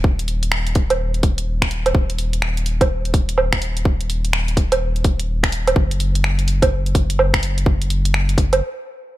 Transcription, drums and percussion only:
0.04 kick loud
0.19 closed hi-hat soft
0.28 open hi-hat medium
0.43 closed hi-hat medium
0.52 finger snap loud
0.67 closed hi-hat soft
0.75 kick loud
0.75 open hi-hat medium
0.90 closed hi-hat medium
0.90 low woodblock medium
1.14 closed hi-hat soft
1.23 kick loud
1.23 open hi-hat medium
1.38 closed hi-hat medium
1.62 finger snap loud
1.62 kick medium
1.62 closed hi-hat soft
1.71 open hi-hat medium
1.86 closed hi-hat medium
1.86 low woodblock medium
1.95 kick loud
2.10 closed hi-hat soft
2.19 open hi-hat medium
2.33 closed hi-hat medium
2.42 finger snap loud
2.57 closed hi-hat soft
2.66 open hi-hat medium
2.81 kick loud
2.81 closed hi-hat medium
2.81 low woodblock medium
3.05 closed hi-hat soft
3.14 kick loud
3.14 open hi-hat medium
3.29 closed hi-hat medium
3.38 low woodblock medium
3.53 finger snap loud
3.53 kick medium
3.53 closed hi-hat soft
3.62 open hi-hat medium
3.77 closed hi-hat medium
3.85 kick loud
4.01 closed hi-hat soft
4.10 open hi-hat medium
4.25 closed hi-hat medium
4.33 finger snap loud
4.48 closed hi-hat soft
4.57 kick loud
4.57 open hi-hat medium
4.72 closed hi-hat medium
4.72 low woodblock medium
4.96 closed hi-hat soft
5.04 kick loud
5.04 open hi-hat medium
5.20 closed hi-hat medium
5.43 finger snap loud
5.43 kick medium
5.43 closed hi-hat soft
5.52 open hi-hat medium
5.67 closed hi-hat medium
5.67 low woodblock medium
5.76 kick loud
5.91 closed hi-hat soft
6.00 open hi-hat medium
6.15 closed hi-hat medium
6.24 finger snap loud
6.39 closed hi-hat soft
6.48 open hi-hat medium
6.62 kick loud
6.62 closed hi-hat medium
6.62 low woodblock medium
6.86 closed hi-hat soft
6.95 kick loud
6.95 open hi-hat medium
7.10 closed hi-hat medium
7.19 low woodblock medium
7.34 finger snap loud
7.34 kick medium
7.34 closed hi-hat soft
7.43 open hi-hat medium
7.58 closed hi-hat medium
7.66 kick loud
7.82 closed hi-hat soft
7.90 open hi-hat medium
8.05 closed hi-hat medium
8.14 finger snap loud
8.29 closed hi-hat soft
8.38 kick loud
8.38 open hi-hat medium
8.53 closed hi-hat medium
8.53 low woodblock medium

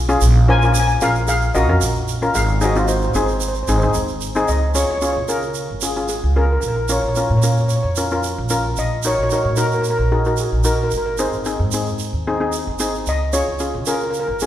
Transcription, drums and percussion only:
0.09 shaker soft
0.21 shaker medium
0.62 shaker soft
0.75 shaker loud
0.89 shaker soft
1.01 shaker medium
1.15 shaker soft
1.28 shaker medium
1.42 shaker soft
1.55 shaker medium
1.81 shaker medium
1.95 shaker soft
2.08 shaker medium
2.22 shaker soft
2.35 shaker medium
2.49 shaker soft
2.61 shaker medium
2.76 shaker soft
2.88 shaker medium
3.02 shaker soft
3.14 shaker medium
3.28 shaker soft
3.40 shaker medium
3.55 shaker soft
3.68 shaker medium
3.81 shaker soft
3.94 shaker medium
4.08 shaker soft
4.21 shaker medium
4.35 shaker soft
4.48 shaker medium
4.75 shaker medium
5.01 shaker medium
5.28 shaker medium
5.42 shaker soft
5.54 shaker medium
5.81 shaker medium
5.96 shaker soft
6.08 shaker medium
6.62 shaker medium
6.89 shaker medium
7.15 shaker medium
7.42 shaker medium
7.57 shaker soft
7.69 shaker medium
7.96 shaker medium
8.11 shaker soft
8.23 shaker medium
8.49 shaker medium
8.77 shaker medium
9.03 shaker medium
9.30 shaker medium
9.56 shaker medium
9.72 shaker soft
9.84 shaker medium
10.25 shaker soft
10.37 shaker medium
10.64 shaker medium
10.91 shaker medium
11.18 shaker medium
11.33 shaker soft
11.45 shaker medium
11.72 shaker medium
11.86 shaker soft
11.99 shaker medium
12.52 shaker medium
12.79 shaker medium
12.94 shaker soft
13.06 shaker medium
13.33 shaker medium
13.59 shaker medium
13.86 shaker medium
14.01 shaker soft
14.14 shaker medium
14.40 shaker medium

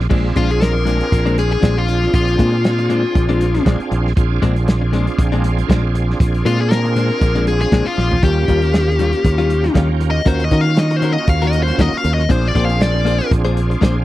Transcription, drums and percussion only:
0.11 kick loud
0.11 crash loud
0.36 kick medium
0.36 closed hi-hat medium
0.50 closed hi-hat soft
0.61 snare loud
0.61 closed hi-hat medium
0.87 closed hi-hat medium
1.00 closed hi-hat soft
1.12 kick loud
1.12 closed hi-hat medium
1.27 closed hi-hat soft
1.38 closed hi-hat medium
1.52 closed hi-hat soft
1.63 kick medium
1.63 snare loud
1.63 closed hi-hat medium
1.88 closed hi-hat medium
2.03 snare soft
2.14 kick loud
2.14 closed hi-hat medium
2.28 closed hi-hat soft
2.39 kick medium
2.39 closed hi-hat medium
2.64 snare loud
2.64 closed hi-hat medium
2.79 closed hi-hat soft
2.90 closed hi-hat medium
3.15 kick loud
3.15 closed hi-hat medium
3.30 closed hi-hat soft
3.41 closed hi-hat medium
3.55 snare soft
3.55 closed hi-hat soft
3.66 kick medium
3.66 snare loud
3.66 closed hi-hat medium
3.80 closed hi-hat soft
3.92 closed hi-hat medium
4.07 snare soft
4.17 kick loud
4.17 closed hi-hat medium
4.42 kick medium
4.42 closed hi-hat medium
4.56 closed hi-hat soft
4.68 snare loud
4.68 closed hi-hat medium
4.93 closed hi-hat medium
5.07 closed hi-hat soft
5.19 kick loud
5.19 closed hi-hat medium
5.33 closed hi-hat soft
5.44 closed hi-hat medium
5.59 closed hi-hat soft
5.69 kick medium
5.69 snare loud
5.69 closed hi-hat medium
5.95 closed hi-hat medium
6.10 snare soft
6.20 kick loud
6.20 closed hi-hat medium
6.34 closed hi-hat soft
6.46 closed hi-hat medium
6.71 snare loud
6.71 closed hi-hat medium
6.85 closed hi-hat soft
6.96 closed hi-hat medium
7.21 kick loud
7.21 closed hi-hat medium
7.35 closed hi-hat soft
7.47 closed hi-hat medium
7.61 snare soft
7.61 closed hi-hat soft
7.72 kick medium
7.72 snare loud
7.72 closed hi-hat medium
7.86 closed hi-hat soft
7.98 snare medium
8.11 floor tom loud
8.23 kick loud
8.23 closed hi-hat medium
8.48 kick medium
8.48 closed hi-hat medium
8.62 closed hi-hat soft
8.73 snare loud
8.73 closed hi-hat medium
8.88 snare soft
8.99 closed hi-hat medium
9.13 closed hi-hat soft
9.25 kick loud
9.25 closed hi-hat medium
9.39 closed hi-hat soft
9.50 closed hi-hat medium
9.64 snare soft
9.64 closed hi-hat soft
9.75 kick medium
9.75 snare loud
9.75 closed hi-hat medium
10.01 closed hi-hat medium
10.26 kick loud
10.26 closed hi-hat medium
10.40 closed hi-hat soft
10.51 kick medium
10.51 closed hi-hat medium
10.77 snare loud
10.77 closed hi-hat medium
10.91 closed hi-hat soft
11.02 closed hi-hat medium
11.27 kick loud
11.27 closed hi-hat medium
11.42 closed hi-hat soft
11.53 closed hi-hat medium
11.68 snare soft
11.68 closed hi-hat soft
11.79 kick medium
11.79 snare loud
11.79 closed hi-hat medium
11.93 closed hi-hat soft
12.04 closed hi-hat medium
12.19 snare soft
12.30 kick loud
12.30 closed hi-hat medium
12.55 kick medium
12.55 closed hi-hat medium
12.70 closed hi-hat soft
12.81 snare loud
12.81 closed hi-hat medium
13.06 closed hi-hat medium
13.20 closed hi-hat soft
13.31 kick loud
13.31 closed hi-hat medium
13.46 closed hi-hat soft
13.57 closed hi-hat medium
13.71 closed hi-hat soft
13.82 kick medium
13.82 snare loud
13.82 closed hi-hat medium

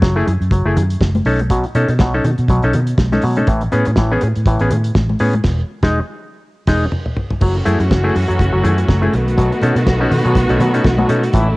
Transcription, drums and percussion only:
0.02 kick loud
0.02 snare loud
0.02 high conga medium
0.28 closed hi-hat medium
0.42 closed hi-hat soft
0.51 kick loud
0.51 closed hi-hat medium
0.51 muted conga soft
0.76 closed hi-hat medium
0.76 low conga medium
0.90 closed hi-hat medium
1.01 kick loud
1.01 snare loud
1.01 high conga medium
1.15 closed hi-hat soft
1.15 high conga medium
1.25 open hi-hat soft
1.39 closed hi-hat soft
1.39 high conga medium
1.50 kick loud
1.50 closed hi-hat medium
1.50 muted conga medium
1.64 closed hi-hat soft
1.75 closed hi-hat medium
1.75 muted conga soft
1.89 closed hi-hat soft
1.99 kick loud
1.99 snare loud
1.99 high conga medium
2.24 closed hi-hat medium
2.24 low conga medium
2.38 closed hi-hat soft
2.48 kick medium
2.48 closed hi-hat medium
2.48 muted conga medium
2.63 closed hi-hat soft
2.73 closed hi-hat medium
2.73 low conga medium
2.87 closed hi-hat medium
2.98 kick loud
2.98 snare loud
2.98 high conga medium
3.12 snare soft
3.12 high conga medium
3.22 open hi-hat medium
3.36 closed hi-hat soft
3.36 high conga medium
3.47 kick loud
3.47 closed hi-hat medium
3.47 muted conga soft
3.61 closed hi-hat soft
3.72 closed hi-hat medium
3.72 muted conga soft
3.85 closed hi-hat soft
3.96 kick loud
3.96 snare medium
3.96 high conga medium
4.21 closed hi-hat medium
4.36 closed hi-hat soft
4.46 kick loud
4.46 closed hi-hat medium
4.46 muted conga medium
4.59 closed hi-hat soft
4.71 closed hi-hat medium
4.71 muted conga soft
4.71 low conga medium
4.84 closed hi-hat medium
4.95 kick loud
4.95 snare loud
4.95 high conga medium
5.10 high conga medium
5.19 open hi-hat medium
5.33 closed hi-hat soft
5.33 high conga medium
5.44 kick medium
5.44 snare medium
5.44 crash medium
5.83 kick loud
5.83 snare loud
6.67 kick loud
6.67 snare medium
6.67 crash medium
6.92 mid tom medium
7.06 mid tom medium
7.17 floor tom medium
7.30 floor tom medium
7.41 kick loud
7.41 crash medium
7.41 muted conga medium
7.66 closed hi-hat medium
7.66 muted conga medium
7.80 closed hi-hat soft
7.91 kick loud
7.91 snare loud
7.91 high conga medium
8.15 open hi-hat medium
8.30 closed hi-hat soft
8.39 kick loud
8.39 closed hi-hat medium
8.39 muted conga medium
8.64 closed hi-hat medium
8.64 muted conga soft
8.64 low conga medium
8.78 closed hi-hat medium
8.88 kick loud
8.88 snare loud
8.88 high conga medium
9.03 high conga medium
9.13 closed hi-hat medium
9.28 closed hi-hat soft
9.38 kick loud
9.38 closed hi-hat medium
9.38 muted conga medium
9.52 closed hi-hat soft
9.62 closed hi-hat medium
9.62 muted conga medium
9.76 closed hi-hat soft
9.87 kick loud
9.87 snare loud
9.87 high conga medium
10.11 open hi-hat medium
10.11 low conga medium
10.25 closed hi-hat soft
10.35 kick loud
10.35 closed hi-hat medium
10.35 muted conga medium
10.49 closed hi-hat soft
10.60 closed hi-hat medium
10.60 muted conga soft
10.60 low conga medium
10.74 closed hi-hat medium
10.84 kick loud
10.84 snare medium
10.84 high conga medium
10.98 high conga medium
11.09 closed hi-hat medium
11.23 closed hi-hat medium
11.33 kick loud
11.33 closed hi-hat medium
11.33 muted conga medium

